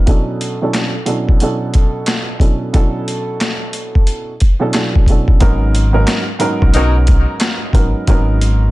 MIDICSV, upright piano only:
0, 0, Header, 1, 2, 480
1, 0, Start_track
1, 0, Key_signature, 5, "minor"
1, 0, Tempo, 666667
1, 55, Time_signature, 4, 2, 24, 8
1, 6271, End_track
2, 0, Start_track
2, 0, Title_t, "Upright piano"
2, 0, Program_c, 0, 0
2, 45, Note_on_c, 0, 47, 93
2, 48, Note_on_c, 0, 54, 88
2, 50, Note_on_c, 0, 61, 82
2, 53, Note_on_c, 0, 62, 86
2, 55, Note_on_c, 0, 64, 83
2, 59, Note_on_c, 0, 69, 100
2, 401, Note_off_c, 0, 47, 0
2, 402, Note_off_c, 0, 54, 0
2, 403, Note_off_c, 0, 61, 0
2, 404, Note_off_c, 0, 62, 0
2, 406, Note_off_c, 0, 64, 0
2, 407, Note_off_c, 0, 69, 0
2, 442, Note_on_c, 0, 47, 80
2, 445, Note_on_c, 0, 54, 85
2, 448, Note_on_c, 0, 61, 87
2, 450, Note_on_c, 0, 62, 89
2, 453, Note_on_c, 0, 64, 82
2, 456, Note_on_c, 0, 69, 103
2, 658, Note_off_c, 0, 47, 0
2, 660, Note_off_c, 0, 54, 0
2, 661, Note_off_c, 0, 61, 0
2, 662, Note_off_c, 0, 62, 0
2, 664, Note_off_c, 0, 64, 0
2, 665, Note_off_c, 0, 69, 0
2, 758, Note_on_c, 0, 47, 91
2, 760, Note_on_c, 0, 54, 84
2, 763, Note_on_c, 0, 61, 81
2, 767, Note_on_c, 0, 62, 85
2, 769, Note_on_c, 0, 64, 89
2, 771, Note_on_c, 0, 69, 93
2, 991, Note_off_c, 0, 47, 0
2, 993, Note_off_c, 0, 54, 0
2, 994, Note_off_c, 0, 61, 0
2, 996, Note_off_c, 0, 62, 0
2, 997, Note_off_c, 0, 64, 0
2, 998, Note_off_c, 0, 69, 0
2, 1016, Note_on_c, 0, 47, 89
2, 1018, Note_on_c, 0, 54, 80
2, 1021, Note_on_c, 0, 61, 81
2, 1024, Note_on_c, 0, 62, 78
2, 1027, Note_on_c, 0, 64, 84
2, 1029, Note_on_c, 0, 69, 106
2, 1690, Note_off_c, 0, 47, 0
2, 1691, Note_off_c, 0, 54, 0
2, 1693, Note_off_c, 0, 61, 0
2, 1694, Note_off_c, 0, 62, 0
2, 1696, Note_off_c, 0, 64, 0
2, 1697, Note_off_c, 0, 69, 0
2, 1721, Note_on_c, 0, 47, 78
2, 1724, Note_on_c, 0, 54, 61
2, 1727, Note_on_c, 0, 61, 65
2, 1729, Note_on_c, 0, 62, 64
2, 1732, Note_on_c, 0, 64, 65
2, 1734, Note_on_c, 0, 69, 80
2, 1953, Note_off_c, 0, 47, 0
2, 1954, Note_off_c, 0, 54, 0
2, 1956, Note_off_c, 0, 61, 0
2, 1957, Note_off_c, 0, 62, 0
2, 1958, Note_off_c, 0, 64, 0
2, 1960, Note_off_c, 0, 69, 0
2, 1966, Note_on_c, 0, 47, 83
2, 1969, Note_on_c, 0, 54, 85
2, 1972, Note_on_c, 0, 61, 85
2, 1973, Note_on_c, 0, 62, 88
2, 1977, Note_on_c, 0, 64, 89
2, 1979, Note_on_c, 0, 69, 108
2, 3095, Note_off_c, 0, 47, 0
2, 3096, Note_off_c, 0, 54, 0
2, 3098, Note_off_c, 0, 61, 0
2, 3099, Note_off_c, 0, 62, 0
2, 3100, Note_off_c, 0, 64, 0
2, 3101, Note_off_c, 0, 69, 0
2, 3309, Note_on_c, 0, 47, 90
2, 3311, Note_on_c, 0, 54, 83
2, 3314, Note_on_c, 0, 61, 84
2, 3317, Note_on_c, 0, 62, 79
2, 3319, Note_on_c, 0, 64, 78
2, 3322, Note_on_c, 0, 69, 102
2, 3399, Note_off_c, 0, 47, 0
2, 3401, Note_off_c, 0, 54, 0
2, 3404, Note_off_c, 0, 61, 0
2, 3407, Note_off_c, 0, 62, 0
2, 3409, Note_off_c, 0, 64, 0
2, 3409, Note_on_c, 0, 47, 74
2, 3412, Note_off_c, 0, 69, 0
2, 3412, Note_on_c, 0, 54, 66
2, 3415, Note_on_c, 0, 61, 70
2, 3418, Note_on_c, 0, 62, 67
2, 3420, Note_on_c, 0, 64, 68
2, 3423, Note_on_c, 0, 69, 80
2, 3637, Note_off_c, 0, 47, 0
2, 3639, Note_off_c, 0, 54, 0
2, 3640, Note_off_c, 0, 61, 0
2, 3641, Note_off_c, 0, 62, 0
2, 3642, Note_off_c, 0, 64, 0
2, 3644, Note_off_c, 0, 69, 0
2, 3660, Note_on_c, 0, 47, 71
2, 3662, Note_on_c, 0, 54, 64
2, 3665, Note_on_c, 0, 61, 59
2, 3668, Note_on_c, 0, 62, 65
2, 3670, Note_on_c, 0, 64, 63
2, 3673, Note_on_c, 0, 69, 84
2, 3879, Note_off_c, 0, 54, 0
2, 3883, Note_off_c, 0, 47, 0
2, 3884, Note_off_c, 0, 61, 0
2, 3886, Note_off_c, 0, 62, 0
2, 3887, Note_off_c, 0, 64, 0
2, 3887, Note_on_c, 0, 44, 101
2, 3889, Note_off_c, 0, 69, 0
2, 3890, Note_on_c, 0, 54, 82
2, 3892, Note_on_c, 0, 59, 90
2, 3895, Note_on_c, 0, 61, 93
2, 3898, Note_on_c, 0, 63, 95
2, 3900, Note_on_c, 0, 70, 102
2, 4242, Note_off_c, 0, 44, 0
2, 4243, Note_off_c, 0, 54, 0
2, 4244, Note_off_c, 0, 59, 0
2, 4245, Note_off_c, 0, 61, 0
2, 4247, Note_off_c, 0, 63, 0
2, 4248, Note_off_c, 0, 70, 0
2, 4265, Note_on_c, 0, 44, 101
2, 4267, Note_on_c, 0, 54, 91
2, 4270, Note_on_c, 0, 59, 90
2, 4273, Note_on_c, 0, 61, 90
2, 4275, Note_on_c, 0, 63, 87
2, 4278, Note_on_c, 0, 70, 113
2, 4490, Note_off_c, 0, 44, 0
2, 4491, Note_off_c, 0, 54, 0
2, 4492, Note_off_c, 0, 59, 0
2, 4493, Note_off_c, 0, 61, 0
2, 4494, Note_off_c, 0, 63, 0
2, 4496, Note_off_c, 0, 70, 0
2, 4599, Note_on_c, 0, 44, 109
2, 4601, Note_on_c, 0, 54, 97
2, 4604, Note_on_c, 0, 59, 89
2, 4606, Note_on_c, 0, 61, 92
2, 4610, Note_on_c, 0, 63, 87
2, 4612, Note_on_c, 0, 70, 114
2, 4832, Note_off_c, 0, 44, 0
2, 4833, Note_off_c, 0, 54, 0
2, 4835, Note_off_c, 0, 59, 0
2, 4836, Note_off_c, 0, 61, 0
2, 4837, Note_off_c, 0, 63, 0
2, 4838, Note_off_c, 0, 70, 0
2, 4854, Note_on_c, 0, 44, 97
2, 4856, Note_on_c, 0, 54, 84
2, 4859, Note_on_c, 0, 59, 84
2, 4861, Note_on_c, 0, 61, 97
2, 4865, Note_on_c, 0, 63, 88
2, 4867, Note_on_c, 0, 70, 108
2, 5529, Note_off_c, 0, 44, 0
2, 5530, Note_off_c, 0, 54, 0
2, 5532, Note_off_c, 0, 59, 0
2, 5533, Note_off_c, 0, 61, 0
2, 5534, Note_off_c, 0, 63, 0
2, 5536, Note_off_c, 0, 70, 0
2, 5564, Note_on_c, 0, 44, 70
2, 5567, Note_on_c, 0, 54, 72
2, 5570, Note_on_c, 0, 59, 72
2, 5572, Note_on_c, 0, 61, 68
2, 5574, Note_on_c, 0, 63, 72
2, 5577, Note_on_c, 0, 70, 89
2, 5794, Note_off_c, 0, 44, 0
2, 5796, Note_off_c, 0, 54, 0
2, 5797, Note_off_c, 0, 59, 0
2, 5798, Note_off_c, 0, 61, 0
2, 5800, Note_off_c, 0, 63, 0
2, 5801, Note_off_c, 0, 70, 0
2, 5818, Note_on_c, 0, 44, 95
2, 5820, Note_on_c, 0, 54, 89
2, 5822, Note_on_c, 0, 59, 90
2, 5825, Note_on_c, 0, 61, 89
2, 5828, Note_on_c, 0, 63, 91
2, 5830, Note_on_c, 0, 70, 101
2, 6271, Note_off_c, 0, 44, 0
2, 6271, Note_off_c, 0, 54, 0
2, 6271, Note_off_c, 0, 59, 0
2, 6271, Note_off_c, 0, 61, 0
2, 6271, Note_off_c, 0, 63, 0
2, 6271, Note_off_c, 0, 70, 0
2, 6271, End_track
0, 0, End_of_file